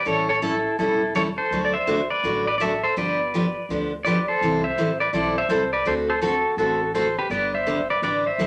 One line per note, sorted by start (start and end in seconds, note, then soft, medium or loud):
0.05 0.64 A1 medium
0.05 0.27 E3 medium
0.05 0.28 G3 medium
0.05 0.27 C#4 medium
0.05 0.28 E4 medium
0.05 0.28 A4 medium
0.05 0.28 C#5 medium
0.29 0.42 A4 medium
0.29 0.43 C#5 medium
0.42 0.54 E3 medium
0.42 0.54 G3 medium
0.42 0.54 C#4 medium
0.42 0.54 E4 medium
0.42 0.77 E4 medium
0.42 0.78 A4 medium
0.42 0.54 A4 medium
0.79 1.37 E1 medium
0.79 1.00 E3 medium
0.79 1.00 G3 medium
0.79 1.01 C#4 medium
0.79 1.13 E4 medium
0.79 1.01 E4 medium
0.79 1.15 A4 medium
0.79 1.01 A4 medium
1.15 1.26 E3 medium
1.15 1.26 G3 medium
1.15 1.27 C#4 medium
1.15 1.27 E4 medium
1.15 1.27 A4 medium
1.15 1.22 A4 medium
1.15 1.22 C#5 medium
1.38 1.63 A4 medium
1.38 1.64 C5 medium
1.51 2.09 D2 medium
1.51 1.73 D3 medium
1.51 1.73 F#3 medium
1.51 1.73 A3 medium
1.51 1.73 D4 medium
1.51 1.74 F#4 medium
1.65 1.74 D5 medium
1.74 2.08 C5 medium
1.74 2.11 E5 loud
1.87 1.99 D3 medium
1.87 1.99 F#3 medium
1.87 1.99 A3 medium
1.87 1.99 D4 medium
1.87 1.99 F#4 medium
2.10 2.44 B4 medium
2.10 2.46 D5 medium
2.23 2.81 A1 medium
2.23 2.45 D3 medium
2.23 2.45 F#3 medium
2.23 2.45 A3 medium
2.23 2.46 D4 medium
2.23 2.46 F#4 medium
2.47 2.57 B4 medium
2.47 2.57 D5 medium
2.58 2.71 D3 medium
2.58 2.71 F#3 medium
2.58 2.72 A3 medium
2.58 2.72 D4 medium
2.58 2.72 F#4 medium
2.58 2.61 D5 medium
2.58 2.84 E5 medium
2.62 2.82 A4 medium
2.84 2.96 A4 medium
2.84 2.97 C5 medium
2.96 3.54 G1 medium
2.96 3.17 D3 medium
2.96 3.18 F3 medium
2.96 3.18 B3 medium
2.96 3.18 D4 medium
2.96 3.18 G4 medium
2.96 3.65 B4 medium
2.96 3.69 D5 medium
3.34 3.44 D3 medium
3.34 3.44 F3 medium
3.34 3.45 B3 medium
3.34 3.45 D4 medium
3.34 3.45 G4 medium
3.69 4.27 D2 medium
3.69 3.91 D3 medium
3.69 3.91 F3 medium
3.69 3.91 B3 medium
3.69 3.91 D4 medium
3.69 3.91 G4 medium
4.05 4.16 D3 medium
4.05 4.16 F3 medium
4.05 4.17 B3 medium
4.05 4.17 D4 medium
4.05 4.17 G4 medium
4.05 4.26 B4 medium
4.05 4.28 D5 medium
4.28 4.62 A4 medium
4.28 4.64 C5 loud
4.41 4.70 C2 medium
4.41 4.63 C3 medium
4.41 4.63 E3 medium
4.41 4.63 G3 medium
4.41 4.63 C4 medium
4.41 4.63 E4 medium
4.41 4.63 A4 medium
4.64 4.98 C5 medium
4.64 5.00 E5 loud
4.77 5.08 A1 medium
4.77 4.88 C3 medium
4.77 4.89 E3 medium
4.77 4.89 G3 medium
4.77 4.89 C4 medium
4.77 4.89 E4 medium
4.77 4.89 A4 medium
5.00 5.13 B4 medium
5.00 5.12 D5 medium
5.13 5.44 B1 medium
5.13 5.34 C3 medium
5.13 5.34 E3 medium
5.13 5.35 G3 medium
5.13 5.35 C4 medium
5.13 5.35 E4 medium
5.13 5.35 A4 medium
5.13 5.37 D5 medium
5.38 5.49 C5 medium
5.38 5.51 E5 medium
5.49 5.79 C2 medium
5.49 5.60 C3 medium
5.49 5.61 E3 medium
5.49 5.61 G3 medium
5.49 5.61 C4 medium
5.49 5.61 E4 medium
5.49 5.61 A4 medium
5.49 5.71 A4 medium
5.49 5.73 C5 medium
5.73 5.85 B4 medium
5.73 5.86 D5 medium
5.85 6.43 D2 medium
5.85 6.06 D3 medium
5.85 6.07 A3 medium
5.85 6.07 C4 medium
5.85 6.07 F#4 medium
5.85 6.07 A4 medium
5.85 5.93 A4 medium
5.85 5.93 C5 loud
6.10 6.21 A4 medium
6.10 6.21 C5 medium
6.21 6.33 D3 medium
6.21 6.33 A3 medium
6.21 6.33 C4 medium
6.21 6.33 F#4 medium
6.21 6.56 F#4 medium
6.21 6.57 A4 medium
6.21 6.33 A4 medium
6.57 7.15 A1 medium
6.57 6.79 D3 medium
6.57 6.79 A3 medium
6.57 6.80 C4 medium
6.57 6.92 F#4 medium
6.57 6.80 F#4 medium
6.57 6.94 A4 medium
6.57 6.80 A4 medium
6.94 7.05 D3 medium
6.94 7.05 A3 medium
6.94 7.06 C4 medium
6.94 7.06 F#4 medium
6.94 7.15 A4 medium
6.94 7.06 A4 medium
6.94 7.17 C5 medium
7.19 7.30 G4 medium
7.19 7.30 B4 medium
7.30 7.87 G1 medium
7.30 7.51 D3 medium
7.30 7.51 G3 medium
7.30 7.52 B3 medium
7.30 7.52 D4 medium
7.30 7.52 G4 medium
7.30 7.52 B4 medium
7.30 7.54 D5 medium
7.54 7.87 C5 medium
7.54 7.87 E5 loud
7.66 7.77 D3 medium
7.66 7.78 G3 medium
7.66 7.78 B3 medium
7.66 7.78 D4 medium
7.66 7.78 G4 medium
7.90 8.02 B4 medium
7.90 8.02 D5 medium
8.02 8.33 A1 medium
8.02 8.24 D3 medium
8.02 8.24 G3 medium
8.02 8.24 B3 medium
8.02 8.24 D4 medium
8.02 8.24 G4 medium
8.02 8.24 B4 medium
8.02 8.26 D5 medium
8.26 8.47 C5 medium
8.26 8.47 E5 medium
8.38 8.47 B1 medium
8.38 8.47 D3 medium
8.38 8.47 G3 medium
8.38 8.47 B3 medium
8.38 8.47 D4 medium
8.38 8.47 G4 medium